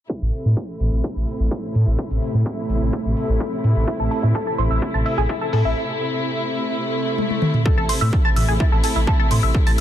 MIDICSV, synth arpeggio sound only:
0, 0, Header, 1, 2, 480
1, 0, Start_track
1, 0, Key_signature, 0, "minor"
1, 0, Tempo, 472441
1, 99, Time_signature, 4, 2, 24, 8
1, 9963, End_track
2, 0, Start_track
2, 0, Title_t, "Synth arpeggio sound"
2, 0, Program_c, 0, 84
2, 3938, Note_on_c, 0, 64, 76
2, 3988, Note_off_c, 0, 64, 0
2, 4061, Note_on_c, 0, 69, 76
2, 4108, Note_off_c, 0, 69, 0
2, 4177, Note_on_c, 0, 69, 76
2, 4260, Note_off_c, 0, 69, 0
2, 4300, Note_on_c, 0, 64, 73
2, 4347, Note_off_c, 0, 64, 0
2, 4417, Note_on_c, 0, 69, 81
2, 4528, Note_off_c, 0, 69, 0
2, 4540, Note_on_c, 0, 69, 95
2, 4619, Note_off_c, 0, 69, 0
2, 4657, Note_on_c, 0, 72, 76
2, 4707, Note_off_c, 0, 72, 0
2, 4781, Note_on_c, 0, 76, 70
2, 4859, Note_off_c, 0, 76, 0
2, 5021, Note_on_c, 0, 81, 93
2, 5068, Note_off_c, 0, 81, 0
2, 5138, Note_on_c, 0, 76, 72
2, 5220, Note_off_c, 0, 76, 0
2, 5261, Note_on_c, 0, 68, 97
2, 5308, Note_off_c, 0, 68, 0
2, 5377, Note_on_c, 0, 64, 80
2, 5427, Note_off_c, 0, 64, 0
2, 5500, Note_on_c, 0, 69, 77
2, 5547, Note_off_c, 0, 69, 0
2, 5618, Note_on_c, 0, 69, 74
2, 5700, Note_off_c, 0, 69, 0
2, 5741, Note_on_c, 0, 64, 72
2, 5788, Note_off_c, 0, 64, 0
2, 7777, Note_on_c, 0, 69, 82
2, 7888, Note_off_c, 0, 69, 0
2, 7900, Note_on_c, 0, 69, 105
2, 7979, Note_off_c, 0, 69, 0
2, 8017, Note_on_c, 0, 72, 75
2, 8067, Note_off_c, 0, 72, 0
2, 8140, Note_on_c, 0, 76, 74
2, 8219, Note_off_c, 0, 76, 0
2, 8381, Note_on_c, 0, 81, 97
2, 8428, Note_off_c, 0, 81, 0
2, 8497, Note_on_c, 0, 76, 73
2, 8580, Note_off_c, 0, 76, 0
2, 8621, Note_on_c, 0, 68, 92
2, 8668, Note_off_c, 0, 68, 0
2, 8737, Note_on_c, 0, 64, 80
2, 8787, Note_off_c, 0, 64, 0
2, 8860, Note_on_c, 0, 69, 73
2, 8908, Note_off_c, 0, 69, 0
2, 8979, Note_on_c, 0, 69, 72
2, 9061, Note_off_c, 0, 69, 0
2, 9103, Note_on_c, 0, 64, 76
2, 9149, Note_off_c, 0, 64, 0
2, 9219, Note_on_c, 0, 69, 80
2, 9330, Note_off_c, 0, 69, 0
2, 9342, Note_on_c, 0, 69, 102
2, 9420, Note_off_c, 0, 69, 0
2, 9458, Note_on_c, 0, 72, 76
2, 9508, Note_off_c, 0, 72, 0
2, 9581, Note_on_c, 0, 76, 74
2, 9659, Note_off_c, 0, 76, 0
2, 9822, Note_on_c, 0, 81, 109
2, 9868, Note_off_c, 0, 81, 0
2, 9963, End_track
0, 0, End_of_file